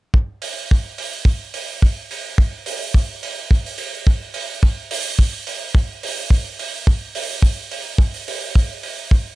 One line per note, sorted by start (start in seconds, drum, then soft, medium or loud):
0.14 kick loud
0.42 open hi-hat medium
0.71 kick loud
0.98 open hi-hat loud
1.25 kick loud
1.54 open hi-hat loud
1.82 kick medium
2.11 open hi-hat medium
2.38 kick loud
2.66 open hi-hat loud
2.94 kick loud
3.23 open hi-hat medium
3.51 kick loud
3.66 open hi-hat medium
3.78 open hi-hat loud
4.07 kick loud
4.34 open hi-hat loud
4.63 kick loud
4.91 open hi-hat loud
5.19 kick medium
5.47 open hi-hat medium
5.75 kick loud
6.03 open hi-hat loud
6.30 kick loud
6.59 open hi-hat loud
6.87 kick loud
7.15 open hi-hat loud
7.42 kick loud
7.71 open hi-hat medium
7.98 kick loud
8.14 open hi-hat medium
8.28 open hi-hat loud
8.55 kick medium
8.83 open hi-hat medium
9.11 kick loud